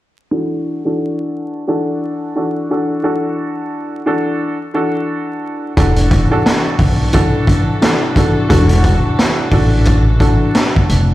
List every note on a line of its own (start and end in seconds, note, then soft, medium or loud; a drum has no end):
0.31 0.81 E3 medium
0.31 0.81 D4 medium
0.31 0.81 F#4 medium
0.31 0.82 A4 loud
0.85 1.62 E3 medium
0.85 1.62 D4 medium
0.85 1.63 F#4 medium
0.85 1.63 A4 loud
1.67 2.31 E3 medium
1.67 2.32 D4 medium
1.67 2.32 F#4 medium
1.67 2.32 A4 loud
2.35 2.68 E3 medium
2.35 2.68 D4 medium
2.35 2.68 F#4 medium
2.35 2.68 A4 medium
2.70 3.02 E3 medium
2.70 3.02 D4 medium
2.70 3.02 F#4 medium
2.70 3.03 A4 medium
3.03 3.99 E3 medium
3.03 4.00 D4 medium
3.03 4.00 F#4 medium
3.03 4.00 A4 loud
4.06 4.56 E3 medium
4.06 4.56 D4 medium
4.06 4.56 F#4 medium
4.06 4.56 A4 loud
4.74 5.70 E3 medium
4.74 5.70 D4 medium
4.74 5.70 F#4 medium
4.74 5.71 A4 loud
5.77 6.22 E1 loud
5.77 6.26 E3 medium
5.77 11.14 E3 medium
5.77 6.26 D4 medium
5.77 11.14 D4 medium
5.77 11.14 F#4 medium
5.77 6.27 F#4 medium
5.77 11.14 A4 medium
5.77 6.27 A4 loud
5.77 kick loud
5.77 closed hi-hat loud
5.96 closed hi-hat medium
6.11 kick loud
6.11 closed hi-hat medium
6.31 7.08 E3 medium
6.31 7.08 D4 medium
6.31 7.08 F#4 medium
6.31 7.08 A4 loud
6.46 snare loud
6.46 snare medium
6.46 closed hi-hat medium
6.79 7.64 B1 medium
6.79 kick medium
6.79 open hi-hat soft
7.13 7.77 E3 loud
7.13 7.77 D4 medium
7.13 7.77 F#4 medium
7.13 7.78 A4 loud
7.13 kick medium
7.13 closed hi-hat medium
7.47 kick medium
7.47 closed hi-hat medium
7.81 8.13 E3 medium
7.81 8.14 D4 medium
7.81 8.14 F#4 medium
7.81 8.14 A4 medium
7.81 snare loud
7.81 snare medium
7.81 closed hi-hat medium
8.16 8.47 E3 medium
8.16 8.48 D4 medium
8.16 8.48 F#4 medium
8.16 8.48 A4 medium
8.16 kick loud
8.16 closed hi-hat medium
8.49 8.95 E1 loud
8.49 9.45 E3 loud
8.49 9.45 D4 medium
8.49 9.45 F#4 medium
8.49 10.71 F#4 loud
8.49 9.46 A4 loud
8.49 kick loud
8.49 closed hi-hat medium
8.69 closed hi-hat medium
8.84 kick loud
8.84 closed hi-hat medium
9.19 snare loud
9.19 snare medium
9.19 closed hi-hat medium
9.51 10.36 A1 medium
9.51 10.01 E3 loud
9.51 10.02 D4 medium
9.51 10.02 F#4 medium
9.51 10.02 A4 loud
9.51 kick medium
9.51 open hi-hat soft
9.85 kick medium
9.85 closed hi-hat medium
10.20 11.14 E3 medium
10.20 11.14 D4 medium
10.20 11.14 F#4 medium
10.20 11.14 A4 loud
10.20 kick medium
10.20 closed hi-hat medium
10.55 snare loud
10.55 snare medium
10.55 closed hi-hat medium
10.76 kick medium
10.89 11.14 F1 medium
10.89 closed hi-hat medium